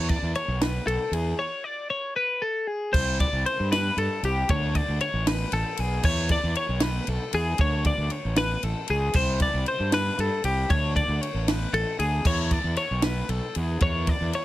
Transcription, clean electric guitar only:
0.09 0.35 D5 medium
0.36 0.62 C#5 medium
0.62 0.87 B4 medium
0.87 1.13 A4 medium
1.13 1.39 G#4 medium
1.39 1.64 C#5 medium
1.64 1.90 D5 medium
1.90 2.16 C#5 medium
2.16 2.42 B4 medium
2.42 2.67 A4 medium
2.67 2.94 G#4 medium
2.93 3.19 C5 medium
3.20 3.46 D5 medium
3.46 3.72 C5 medium
3.72 3.98 B4 medium
3.98 4.24 A4 medium
4.25 4.50 G4 medium
4.50 4.75 C#5 loud
4.75 5.01 D5 medium
5.01 5.27 C#5 medium
5.27 5.53 B4 medium
5.53 5.80 A4 medium
5.80 6.05 G#4 medium
6.05 6.30 C#5 medium
6.31 6.56 D5 medium
6.57 6.83 C#5 medium
6.83 7.09 B4 medium
7.09 7.34 A4 medium
7.34 7.60 G#4 medium
7.61 7.86 C#5 loud
7.87 8.12 D5 medium
8.12 8.37 C#5 medium
8.38 8.64 B4 medium
8.64 8.89 A4 medium
8.90 9.15 G#4 medium
9.16 9.41 C5 medium
9.42 9.67 D5 medium
9.68 9.93 C5 medium
9.94 10.19 B4 medium
10.20 10.45 A4 medium
10.45 10.71 G4 medium
10.70 10.96 C#5 loud
10.96 11.21 D5 medium
11.21 11.48 C#5 medium
11.48 11.74 B4 medium
11.74 11.99 A4 medium
11.99 12.26 G#4 medium
12.27 12.52 C#5 loud
12.52 12.77 D5 medium
12.77 13.04 C#5 medium
13.04 13.30 B4 medium
13.30 13.56 A4 medium
13.56 13.82 G#4 medium
13.82 14.09 C#5 medium
14.09 14.35 D5 medium
14.35 14.45 C#5 medium

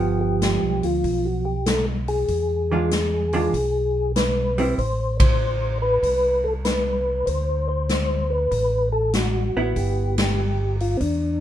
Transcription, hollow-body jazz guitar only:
0.00 1.55 F3 medium
0.00 1.56 B3 medium
2.72 2.90 E3 medium
2.72 2.90 G#3 medium
2.72 2.91 D4 medium
2.72 2.91 F4 medium
3.33 3.52 E3 medium
3.33 3.52 G#3 medium
3.33 3.52 D4 medium
3.33 3.53 F4 medium
4.58 4.77 G3 medium
4.58 4.77 C4 medium
4.58 4.77 E4 medium
9.57 10.35 B3 medium
9.57 10.35 E4 medium

